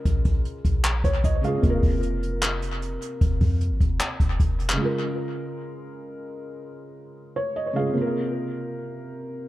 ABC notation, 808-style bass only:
X:1
M:4/4
L:1/16
Q:1/4=152
K:Bbm
V:1 name="808-style bass" clef=bass
B,,,2 B,,,2 z2 B,,,4 B,,,2 B,,,2 z2 | F,,,2 F,,,12 z2 | F,,,2 F,,3 A,,, F,,,2 z2 F,,,2 F,,,4 | z16 |
z16 | z16 |]